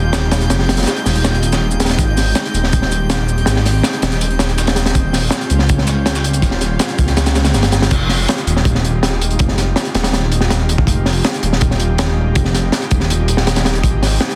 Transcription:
Already playing: D#1 G#3 D#4 F4 G4 G6
0.13 snare, closed hi-hat, shaker
0.31 snare, closed hi-hat, shaker
0.40 closed hi-hat
0.50 F1, snare, closed hi-hat, shaker
0.59 snare
0.69 snare, closed hi-hat, open hi-hat
0.77 snare, closed hi-hat
0.83 snare, closed hi-hat
0.86 snare, closed hi-hat, shaker
0.96 closed hi-hat
1.06 D#1, snare, open hi-hat, shaker
1.15 closed hi-hat
1.24 snare, closed hi-hat, shaker
1.34 closed hi-hat
1.43 closed hi-hat, shaker
1.52 snare, shaker
1.71 shaker
1.80 snare, closed hi-hat, shaker
1.85 snare, closed hi-hat
1.89 snare, closed hi-hat
1.99 G#1 C4 G4, kick, closed hi-hat, shaker
2.17 snare, open hi-hat, shaker
2.35 snare, closed hi-hat, shaker
2.45 closed hi-hat
2.54 D#1, closed hi-hat, shaker
2.64 snare
2.73 kick, closed hi-hat, shaker
2.82 snare
2.91 closed hi-hat, shaker
3.10 snare, closed hi-hat, shaker
3.28 shaker
3.38 closed hi-hat
3.46 G#1, snare, closed hi-hat, shaker
3.56 snare
3.66 snare, closed hi-hat, open hi-hat
3.83 snare, closed hi-hat, shaker
3.93 closed hi-hat
4.02 D#1, snare, closed hi-hat, shaker
4.12 snare, closed hi-hat
4.21 closed hi-hat, shaker
4.31 closed hi-hat
4.39 snare, closed hi-hat, shaker
4.49 closed hi-hat
4.58 snare, closed hi-hat, shaker
4.67 snare, closed hi-hat
4.76 snare, closed hi-hat, shaker
4.86 snare, closed hi-hat
4.95 D#1 G3 C#4 F4, kick, closed hi-hat, shaker
5.13 snare, open hi-hat, shaker
5.30 snare, closed hi-hat
5.32 snare, shaker
5.41 closed hi-hat
5.50 C#2, closed hi-hat, shaker
5.59 snare
5.69 kick, closed hi-hat, shaker
5.78 snare
5.87 snare, closed hi-hat, shaker
6.06 snare, closed hi-hat, shaker
6.15 snare, shaker
6.24 closed hi-hat
6.33 closed hi-hat, shaker
6.42 D#1, kick, snare, closed hi-hat, shaker
6.51 snare
6.61 snare, closed hi-hat, shaker
6.79 snare, closed hi-hat, shaker
6.89 closed hi-hat
6.98 C#2, kick, closed hi-hat, shaker
7.07 snare, closed hi-hat
7.17 snare, closed hi-hat, shaker
7.26 snare, closed hi-hat, shaker
7.35 snare, closed hi-hat, shaker
7.44 snare, closed hi-hat, shaker
7.54 G1, snare, closed hi-hat, shaker
7.63 snare, closed hi-hat
7.72 snare, closed hi-hat, shaker
7.82 snare, closed hi-hat
7.91 F1 G#3 D#4 F4 G4, kick, closed hi-hat, crash
8.09 snare, open hi-hat
8.28 snare, closed hi-hat
8.38 closed hi-hat
8.47 D#1, closed hi-hat
8.56 snare
8.65 kick, closed hi-hat
8.75 snare
8.85 closed hi-hat
9.03 snare, closed hi-hat
9.21 closed hi-hat
9.31 closed hi-hat
9.39 F1, kick, closed hi-hat
9.48 snare
9.58 snare, closed hi-hat
9.76 snare, closed hi-hat
9.85 closed hi-hat
9.95 D#1, snare, closed hi-hat
10.04 snare, closed hi-hat
10.13 snare, closed hi-hat
10.32 closed hi-hat
10.41 snare
10.50 snare, closed hi-hat
10.69 closed hi-hat
10.78 kick
10.87 F1, kick, closed hi-hat
11.06 snare, open hi-hat
11.24 snare, closed hi-hat
11.34 closed hi-hat
11.43 D#1, closed hi-hat
11.53 snare
11.61 kick, closed hi-hat
11.71 snare
11.80 closed hi-hat
11.98 snare, closed hi-hat
12.35 F1, kick, closed hi-hat
12.45 snare
12.54 snare, closed hi-hat
12.72 snare, closed hi-hat
12.82 closed hi-hat
12.91 D#1, kick, closed hi-hat
13.00 snare
13.10 closed hi-hat
13.28 closed hi-hat
13.37 snare
13.47 snare, closed hi-hat
13.56 snare, closed hi-hat
13.65 snare, closed hi-hat
13.75 closed hi-hat
13.83 G#1 C4, kick, closed hi-hat
14.02 snare, open hi-hat
14.21 snare, closed hi-hat
14.30 closed hi-hat

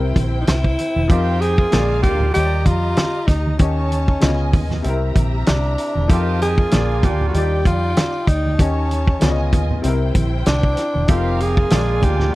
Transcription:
Already playing: C2 C3 C4 E4 A#4 C5 G5
0.16 A#1, kick, closed hi-hat, high conga
0.41 D#4
0.46 C2 E4, snare, closed hi-hat, high conga
0.64 kick
0.79 closed hi-hat, muted conga
0.96 E1, high conga
1.08 F2 D#3 F3 C4 D#4 F4 G4 A#4 C5 G5, kick, closed hi-hat
1.41 G#4, closed hi-hat
1.58 C3 A#3 F4, kick
1.71 A#1 D3 G#3 A#3 D4 F4 A#4 D5 F5, snare, closed hi-hat, muted conga, high conga
2.03 D2 G4, kick, closed hi-hat, high conga, low conga
2.20 low conga
2.32 G3 G4 D#5 A#5, closed hi-hat, muted conga
2.36 D#2 G4 C#5
2.45 D5
2.65 F2 F4, kick, closed hi-hat, muted conga, high conga
2.97 snare, closed hi-hat, high conga
3.27 D2 D#4, kick, snare, closed hi-hat, muted conga
3.47 high conga
3.58 D#2 D#3 C#4 D#4 G4 C#5 D#5 A5, kick, closed hi-hat, muted conga
3.92 closed hi-hat, muted conga
4.08 kick
4.20 C#2 C#3 B3 F4 D#5 G#5, snare, closed hi-hat, high conga
4.53 D#2, kick, open hi-hat, high conga, low conga
4.70 snare, low conga
4.82 C2 C3 C4 G4 E5 A#5, closed hi-hat
4.87 E4 A#4
5.15 A#1, kick, closed hi-hat, muted conga, high conga
5.46 C2 D4, snare, closed hi-hat, muted conga, high conga
5.78 closed hi-hat
5.95 E1, high conga
6.08 F2 D#3 F3 C4 D#4 F4 G4 A4 D#5 A5, kick, closed hi-hat
6.18 A#4
6.41 G#4, closed hi-hat, muted conga
6.57 C3 A#3 F4, kick
6.70 A#1 A#3 D4 F4 G#4 D5 G#5, snare, closed hi-hat, muted conga, high conga
7.03 D2 G4, kick, closed hi-hat, muted conga, high conga, low conga
7.21 low conga
7.28 G3 F#4
7.34 D#2 D#4 F4 G4 D5 G5, closed hi-hat, muted conga
7.38 D5
7.42 G4
7.65 F2 F4, kick, closed hi-hat, high conga
7.96 snare, closed hi-hat, high conga
8.27 D2 D#4, kick, closed hi-hat
8.46 high conga
8.58 D#2 D#3 C#4 D#4 G4 C#5 D#5 A5, kick, closed hi-hat, muted conga
8.91 closed hi-hat, muted conga
9.07 kick
9.20 C#2 C#3 B3 F4 D5 D#5 G#5, snare, closed hi-hat, muted conga, high conga
9.30 D#5
9.53 D#2, kick, closed hi-hat, muted conga, high conga, low conga
9.71 low conga
9.82 C2 C3 C4 E4 C5 G5, closed hi-hat, muted conga
9.88 A#4
10.15 A#1, kick, closed hi-hat, high conga
10.46 C2 D4, snare, closed hi-hat, muted conga, high conga
10.63 kick
10.77 snare, closed hi-hat
10.95 E1, high conga
11.08 F1 D#3 F3 C4 D#4 F4 G4 A4 A#4 F5, kick, closed hi-hat
11.17 A#4
11.40 G#4, closed hi-hat, muted conga
11.57 C3 A#3 F4, kick
11.70 A#1 G#3 A#3 D4 F4 D5 G#5, snare, closed hi-hat, high conga
12.02 D2 G4, kick, closed hi-hat, muted conga, high conga, low conga
12.20 snare, low conga
12.31 G3

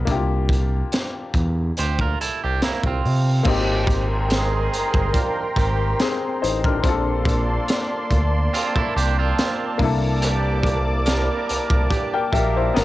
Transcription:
0.05 C2 A#3 D4 E4, kick, closed hi-hat
0.11 G4
0.15 F4
0.49 kick, closed hi-hat
0.92 snare, closed hi-hat
1.34 E2, kick, closed hi-hat
1.77 D2 G4 C5, closed hi-hat
1.99 F4 A#4, kick
2.21 C2 E4 A4, closed hi-hat
2.44 C2 D4 G4
2.62 C2 A#3 E4, snare, closed hi-hat
2.83 C2 C4 F4, kick
3.05 C3, open hi-hat
3.43 G#1 D#3 G3 A#3 C4 G4 A#4 G5 A#5 C6, kick, crash
3.47 D#4 G4
3.87 kick, closed hi-hat
4.29 D#3 G#3 C4 G#4, snare, closed hi-hat
4.73 G1, closed hi-hat
4.94 G1, kick
5.13 F3 D4 F4, kick, closed hi-hat
5.56 G#1 D#3 G3 C4 G4, kick, closed hi-hat
6.00 C4 G#4, snare, closed hi-hat
6.42 A1 D#4 C5, closed hi-hat
6.64 D4 A#4, kick
6.83 A#1 A#3 C4 D4 D5 A5 C6, kick, closed hi-hat
6.87 F4 A4
7.26 kick, closed hi-hat
7.68 snare, closed hi-hat
8.11 D2, kick, closed hi-hat
8.53 C4 F4, closed hi-hat
8.75 C2 E4 A4, kick
8.96 C2 D4 G4, closed hi-hat
9.19 C4 F4
9.38 snare, closed hi-hat
9.78 C2 A#3 D4 E4 D5 D6, kick
9.82 A4, open hi-hat
10.21 E3 G3 D4 G4, closed hi-hat
10.63 kick, closed hi-hat
11.05 G3 A#3 E4 A#4, snare, closed hi-hat
11.49 C2, closed hi-hat
11.70 C2, kick
11.89 E3 G3 D4 G4, kick, closed hi-hat
12.14 A#4 G5
12.32 A#1 F#3 A#3 D#4 G4 A#4 E5, kick, closed hi-hat
12.56 E4 C5
12.74 G#1 B3 C#4 F#4 A#4 F#5 A#5 C#6, snare, closed hi-hat

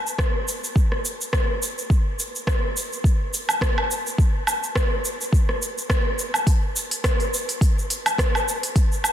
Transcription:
0.07 shaker
0.18 kick, cross-stick, shaker
0.48 shaker
0.64 shaker
0.76 kick, shaker
0.92 cross-stick
1.05 shaker
1.21 shaker
1.33 kick, cross-stick, shaker
1.63 shaker
1.78 shaker
1.90 kick, shaker
2.19 shaker
2.35 shaker
2.47 kick, cross-stick, shaker
2.77 shaker
2.93 shaker
3.04 kick, shaker
3.34 shaker
3.49 low woodblock, shaker
3.61 kick, cross-stick, shaker
3.78 low woodblock
3.91 shaker
4.07 shaker
4.18 kick, shaker
4.47 low woodblock, shaker
4.63 shaker
4.75 kick, cross-stick, shaker
5.05 shaker
5.21 shaker
5.33 kick, shaker
5.49 cross-stick
5.62 shaker
5.78 shaker
5.90 kick, cross-stick, shaker
6.19 shaker
6.34 low woodblock, shaker
6.47 kick, open hi-hat, shaker
6.76 shaker
6.91 open hi-hat, shaker
7.04 kick, cross-stick, open hi-hat, shaker
7.20 open hi-hat, shaker
7.34 shaker
7.49 open hi-hat, shaker
7.61 kick, open hi-hat, shaker
7.79 shaker
7.90 open hi-hat, shaker
8.06 open hi-hat, low woodblock, shaker
8.18 kick, cross-stick, open hi-hat, shaker
8.35 low woodblock, shaker
8.48 shaker
8.63 open hi-hat, shaker
8.76 kick, open hi-hat, shaker
8.92 shaker
9.04 low woodblock, shaker

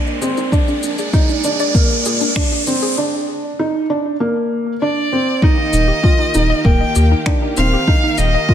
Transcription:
Already playing: G#3 A#3 C4 D4, riser
0.07 D#5, shaker
0.21 G#1 C4 G#4, shaker
0.37 D#4, shaker
0.52 G#3 D4 D5, kick, shaker
0.68 D4, shaker
0.83 A#1 D4, shaker
0.98 G#4, shaker
1.13 D4 D#4, kick, shaker
1.29 D4, shaker
1.44 A#1 D4, shaker
1.59 D5, shaker
1.75 A#1 A#3 A#4, kick, shaker
1.90 D5, shaker
2.05 A#2 G#4, shaker
2.21 D4, shaker
2.36 D4, finger snap, kick, shaker
2.52 D4, shaker
2.67 A#1 C4 D4, shaker
2.82 G#4, shaker
2.98 D4
3.59 D#4
3.90 D4
4.20 A#3
4.81 D4 D5
5.13 C4
5.41 D#3 A#3 D#4 F4 G4 A#4 D#5, kick
5.58 D#4
5.73 D#1 D#4, shaker
5.88 G4
6.03 D4 F4, kick
6.19 D#4
6.34 D#1 D#4, shaker
6.50 D#5
6.65 D#1 A#3 A#4 G5, kick
6.80 D#5
6.95 D#2 G4, shaker
7.11 D#4
7.26 D4 D#4, finger snap, kick
7.42 D#4
7.57 D#1 C4 D#4 F5, shaker
7.73 G4
7.88 D4 D#4, kick
8.04 D#4
8.18 D#1 D#4 D#5, shaker
8.35 D#5
8.49 F4 A#4, kick

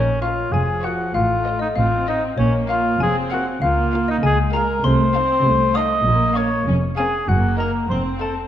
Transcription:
Already playing: A#1 A#2 C#4 C#5
0.21 F4 A#4 C#5 F5
0.52 F1 F2 F3 G#4 G#5
0.83 F4 F#4 A#4 C#5 F#5
1.14 A1 A2 A3 F4 F5
1.46 F4 C5 D#5
1.59 D#4 D#5
1.76 A1 A2 C4 F4 F5
2.08 D#4 F4 C5 D#5
2.38 A#1 A#2 A#3 C#4 C#5
2.69 F4 A#4 F5
3.00 F1 F2 C4 G#4 G#5
3.31 F4 F#4 A#4 F5 F#5
3.62 C#2 C#3 A#3 F4 F5
3.93 F4 A#4 F5
4.08 D#4 D#5
4.23 C#2 C#3 G#3 G#4 G#5
4.53 F4 A#4 F5 A#5
4.84 C2 C3 A3 C5 C6
5.14 C4 D#4 A4 F5
5.44 C2 C3 A3
5.75 D#4 A4 D#5 F5 D#6
6.05 A#1 A#2 A#3
6.35 C#4 A#4 C#5 F5 C#6
6.67 F1 F2 C#4
6.97 C4 C#4 G#4 A#4 F5 G#5
7.27 F#1 F#2 A#3 F#4 F#5
7.57 D#4 A#4 D#5 A#5
7.89 F1 F2 C4 C5 C6
8.20 D#4 A4 F5 A5

